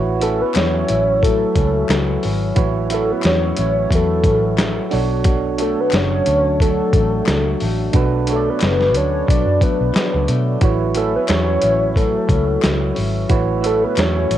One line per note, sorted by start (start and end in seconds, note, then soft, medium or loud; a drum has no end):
0.00 0.42 A1 loud
0.00 0.53 A3 medium
0.00 0.12 E4 medium
0.00 0.12 F#4 medium
0.00 0.87 F#4 medium
0.00 0.13 B4 medium
0.00 0.13 C#5 medium
0.19 1.53 C#4 medium
0.19 1.16 E4 medium
0.19 1.16 F#4 medium
0.19 0.43 A4 medium
0.19 1.17 B4 medium
0.19 1.17 E5 medium
0.19 closed hi-hat medium
0.41 0.58 B4 medium
0.54 0.82 E2 medium
0.54 1.22 F#3 medium
0.54 1.24 C#5 loud
0.54 snare loud
0.54 clap medium
0.54 closed hi-hat medium
0.88 1.43 A1 loud
0.88 3.56 E4 medium
0.88 closed hi-hat medium
1.22 1.89 F#3 medium
1.22 2.23 A4 loud
1.22 kick medium
1.22 closed hi-hat loud
1.54 1.83 C#2 medium
1.54 2.21 C#4 medium
1.54 kick medium
1.54 closed hi-hat medium
1.89 2.16 C#2 medium
1.89 3.24 F#3 medium
1.89 snare loud
1.89 clap medium
1.89 closed hi-hat medium
2.22 2.51 G#1 medium
2.22 2.89 C#4 medium
2.22 open hi-hat soft
2.55 3.11 A1 medium
2.55 4.91 A2 medium
2.55 2.81 E4 medium
2.55 2.81 F#4 medium
2.55 2.81 B4 medium
2.55 2.82 C#5 medium
2.55 kick loud
2.55 closed hi-hat medium
2.90 4.23 C#4 medium
2.90 3.85 E4 medium
2.90 3.85 F#4 medium
2.90 3.13 A4 medium
2.90 3.86 B4 medium
2.90 3.86 E5 medium
2.90 closed hi-hat medium
3.12 3.25 B4 loud
3.22 3.51 E2 medium
3.22 3.91 F#3 medium
3.22 3.96 C#5 loud
3.22 snare loud
3.22 clap medium
3.22 closed hi-hat medium
3.57 3.85 A1 loud
3.57 4.99 E4 medium
3.57 closed hi-hat medium
3.91 4.25 E2 loud
3.91 4.57 F#3 medium
3.91 kick medium
3.91 closed hi-hat loud
3.95 4.94 A4 medium
4.24 4.78 A1 medium
4.24 4.99 C#4 medium
4.24 kick medium
4.24 closed hi-hat medium
4.57 5.92 F#3 medium
4.57 snare loud
4.57 clap medium
4.57 closed hi-hat medium
4.91 5.73 B1 loud
4.91 5.23 B2 medium
4.91 5.46 D4 medium
4.91 5.46 F#4 medium
4.91 5.47 A4 medium
4.91 5.48 C#5 loud
4.91 open hi-hat soft
5.24 7.93 B2 medium
5.24 kick loud
5.24 closed hi-hat loud
5.58 6.94 A3 medium
5.58 6.54 D4 medium
5.58 6.54 F#4 medium
5.58 6.55 A4 medium
5.58 5.82 A4 medium
5.58 6.55 C#5 medium
5.58 closed hi-hat medium
5.80 5.97 B4 medium
5.91 6.20 F#1 medium
5.91 6.60 F#3 medium
5.91 snare loud
5.91 clap medium
5.91 closed hi-hat medium
5.95 6.61 C#5 loud
6.26 6.80 D2 loud
6.26 8.93 D4 medium
6.26 closed hi-hat medium
6.60 7.27 F#3 medium
6.60 7.57 A4 medium
6.60 kick medium
6.60 closed hi-hat loud
6.93 7.20 A1 loud
6.93 7.60 A3 medium
6.93 kick medium
6.93 closed hi-hat medium
7.26 7.54 C#2 medium
7.26 8.60 F#3 medium
7.26 snare loud
7.26 clap medium
7.26 closed hi-hat loud
7.60 7.88 A1 medium
7.60 8.27 A3 medium
7.60 open hi-hat soft
7.93 8.48 B1 loud
7.93 10.62 B2 medium
7.93 8.18 D4 medium
7.93 8.19 F#4 medium
7.93 8.19 A4 medium
7.93 8.19 B4 loud
7.93 kick loud
7.93 closed hi-hat loud
8.27 9.60 A3 medium
8.27 9.22 D4 medium
8.27 9.23 F#4 medium
8.27 9.23 A4 medium
8.27 8.36 C#5 medium
8.27 closed hi-hat medium
8.32 8.51 A4 medium
8.32 9.27 D5 medium
8.50 8.98 B4 loud
8.60 8.95 F#1 medium
8.60 9.27 F#3 medium
8.60 snare loud
8.60 clap medium
8.60 closed hi-hat medium
8.81 snare soft
8.94 9.22 D2 medium
8.94 10.69 D4 medium
8.94 9.31 C#5 loud
8.94 closed hi-hat medium
9.27 9.43 B1 loud
9.27 9.92 F#3 medium
9.27 9.64 D5 loud
9.27 kick medium
9.27 closed hi-hat loud
9.46 9.58 F#2 medium
9.60 10.27 A3 medium
9.60 10.29 B4 loud
9.60 kick medium
9.60 closed hi-hat medium
9.81 9.92 B1 medium
9.93 11.28 F#3 medium
9.93 snare loud
9.93 clap medium
9.93 closed hi-hat medium
10.14 10.26 C#2 medium
10.27 10.55 B2 medium
10.27 10.94 A3 medium
10.27 closed hi-hat medium
10.61 11.16 A1 loud
10.61 10.86 E4 medium
10.61 10.87 F#4 medium
10.61 10.87 B4 medium
10.61 10.88 C#5 medium
10.61 kick loud
10.61 closed hi-hat medium
10.94 12.27 C#4 medium
10.94 11.91 E4 medium
10.94 11.91 F#4 medium
10.94 11.13 A4 medium
10.94 11.91 B4 medium
10.94 11.91 E5 medium
10.94 closed hi-hat medium
11.16 11.22 B4 medium
11.28 11.56 E2 medium
11.28 11.94 F#3 medium
11.28 11.98 C#5 loud
11.28 snare loud
11.28 clap medium
11.28 closed hi-hat medium
11.60 12.17 A1 medium
11.60 14.30 E4 medium
11.60 closed hi-hat medium
11.94 12.62 F#3 medium
11.94 12.97 A4 medium
11.94 kick medium
11.94 closed hi-hat medium
12.28 12.56 C#2 medium
12.28 12.94 C#4 medium
12.28 kick medium
12.28 closed hi-hat medium
12.62 12.91 C#2 medium
12.62 13.97 F#3 medium
12.62 snare loud
12.62 clap medium
12.62 closed hi-hat medium
12.95 13.24 G#1 medium
12.95 13.62 C#4 medium
12.95 open hi-hat soft
13.29 13.84 A1 loud
13.29 14.38 A2 medium
13.29 13.54 E4 medium
13.29 13.54 F#4 medium
13.29 13.55 B4 medium
13.29 13.55 C#5 loud
13.29 kick loud
13.29 closed hi-hat medium
13.61 14.38 C#4 medium
13.61 14.38 E4 medium
13.61 14.38 F#4 medium
13.61 14.38 B4 medium
13.61 14.38 E5 medium
13.61 closed hi-hat medium
13.66 13.85 A4 medium
13.84 14.01 B4 loud
13.96 14.24 E2 loud
13.96 14.38 F#3 medium
13.96 14.38 C#5 loud
13.96 snare loud
13.96 clap medium
13.96 closed hi-hat medium
14.30 14.38 A1 loud
14.30 14.38 E4 medium
14.30 closed hi-hat medium